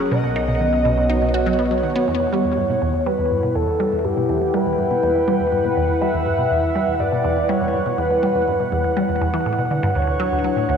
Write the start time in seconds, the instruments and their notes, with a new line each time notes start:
Already playing: analog synth pad F#3 C#4 G#4 A#5, soft synth lead G#4, synth texture F#5
0.11 analog synth bass B1, synth arpeggio sound B2, analog synth pad B3, soft synth lead D#5
0.24 synth arpeggio sound B2
0.31 analog synth pad C#5
0.36 synth arpeggio sound D#4
0.48 synth arpeggio sound B2
0.61 synth arpeggio sound D#3, analog synth pad F#4
0.73 synth arpeggio sound F#3
0.85 synth arpeggio sound B2
0.97 synth arpeggio sound B2, analog synth pad D#5
1.10 synth arpeggio sound D#4
1.22 synth arpeggio sound B2
1.34 synth arpeggio sound F#4
1.46 synth arpeggio sound F#3
1.59 synth arpeggio sound B3
1.71 synth arpeggio sound F#3
1.83 synth arpeggio sound D#3
1.96 synth arpeggio sound B3
2.08 synth arpeggio sound E2, analog synth pad E4, soft synth lead C#5
2.20 synth arpeggio sound E2
2.33 synth arpeggio sound G3
2.45 synth arpeggio sound E2
2.51 analog synth pad G5
2.57 synth arpeggio sound G2
2.70 synth arpeggio sound B2, analog synth pad B4
2.82 synth arpeggio sound E2
2.94 synth arpeggio sound E2
2.99 analog synth pad F#5
3.06 synth arpeggio sound G3, soft synth lead B4
3.19 synth arpeggio sound E2
3.31 synth arpeggio sound G2
3.43 synth arpeggio sound B2
3.55 synth arpeggio sound E2, soft synth lead A4
3.68 synth arpeggio sound E2
3.80 synth arpeggio sound G3
3.92 synth arpeggio sound E2
4.05 synth arpeggio sound G2, soft synth lead G4
4.17 synth arpeggio sound B2
4.29 synth arpeggio sound E2
4.42 synth arpeggio sound E2
4.54 synth arpeggio sound G3, soft synth lead B4
4.66 synth arpeggio sound E2
4.79 synth arpeggio sound G2
4.91 synth arpeggio sound B2
5.03 synth arpeggio sound E2
5.16 synth arpeggio sound E2
5.28 synth arpeggio sound G3
5.40 synth arpeggio sound E2
5.52 synth arpeggio sound G2, soft synth lead B4
5.65 synth arpeggio sound B2
5.77 synth arpeggio sound E2
5.89 synth arpeggio sound E2
6.01 synth arpeggio sound G3, soft synth lead E5
6.14 synth arpeggio sound E2
6.26 synth arpeggio sound G2
6.39 synth arpeggio sound B2
6.51 synth arpeggio sound E2, soft synth lead E5
6.63 synth arpeggio sound E2
6.75 synth arpeggio sound G3
6.88 synth arpeggio sound E2
7.00 synth arpeggio sound G2, soft synth lead D5
7.12 synth arpeggio sound B2
7.25 synth arpeggio sound E2
7.37 synth arpeggio sound E2
7.49 synth arpeggio sound G3, soft synth lead C#5
7.61 synth arpeggio sound E2
7.74 synth arpeggio sound G2
7.86 synth arpeggio sound B2
7.98 synth arpeggio sound E2, soft synth lead B4
8.11 synth arpeggio sound E2
8.23 synth arpeggio sound G3
8.35 synth arpeggio sound E2
8.48 synth arpeggio sound G2
8.60 synth arpeggio sound B2
8.72 synth arpeggio sound E2
8.84 synth arpeggio sound E2
8.97 synth arpeggio sound G3
9.09 synth arpeggio sound E2
9.21 synth arpeggio sound E2
9.34 synth arpeggio sound E3
9.46 synth arpeggio sound A2
9.59 synth arpeggio sound B2
9.71 synth arpeggio sound D3
9.83 synth arpeggio sound G2
9.95 synth arpeggio sound D2, analog synth pad D4, soft synth lead C#5
10.07 synth arpeggio sound D2
10.20 synth arpeggio sound F#3
10.32 synth arpeggio sound D2
10.44 synth arpeggio sound F#3
10.53 synth arpeggio sound A2, analog synth pad A4
10.69 synth arpeggio sound D2